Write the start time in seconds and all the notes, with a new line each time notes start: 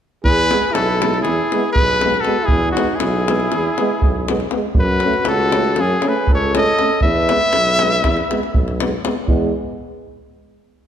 0.23 E2 G#4 B4, davul low
0.51 G#3 B3, davul high
0.63 davul high
0.71 E4 A4
0.75 B1, davul high
1.01 G#3 B3, davul high
1.14 davul high
1.20 E4 G#4
1.25 E2, davul high
1.52 G#3 B3, davul high
1.71 G#4 B4
1.76 B1, davul low
2.01 G#3 B3, davul high
2.14 davul high
2.20 F#4 A4
2.24 G#3 B3, davul high
2.43 E4 G#4
2.48 E2, davul low
2.70 D#4 F#4
2.76 G#3 B3, davul high
2.95 E4 G#4
3.00 B1, davul high
3.28 G#3 B3, davul high
3.40 davul high
3.52 E2, davul high
3.78 G#3 B3, davul high
4.02 B1, davul low
4.28 G#3 B3, davul high
4.40 davul high
4.51 B3, davul high
4.55 G#3
4.75 F#2, davul low
4.79 F#4 B4
5.00 C#4, davul high
5.06 A3
5.13 davul high
5.25 C#2 F#4 A4, davul high
5.52 C#4, davul high
5.57 A3
5.64 davul high
5.76 F#2 C#4, davul high
5.80 G#4
6.02 C#4, davul high
6.07 A3 G#4 B4
6.27 C#2 A4, davul low
6.34 C#5
6.54 A3 C#4 A4 D#5, davul high
6.67 davul high
6.79 A3 C#4, davul high
7.01 E2 B4 E5, davul low
7.15 davul high
7.29 G#3 B3, davul high
7.41 davul high
7.53 B1, davul high
7.67 davul high
7.79 G#3 B3, davul high
7.92 davul high
8.04 E2, davul high, davul low
8.17 davul high
8.30 G#3 B3, davul high
8.43 davul high
8.54 B1, davul low
8.68 davul high
8.80 G#3 B3, davul high
9.04 G#3 B3, davul high
9.27 E2 G#3 B3, davul low